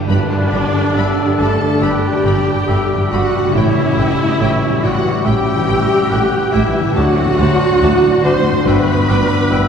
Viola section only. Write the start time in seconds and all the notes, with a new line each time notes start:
0.08 D4
1.39 A4
1.82 G4
3.11 F#4
3.54 E4
4.83 F#4
5.26 G4
6.54 E4
6.97 F#4
8.25 C5
8.66 B4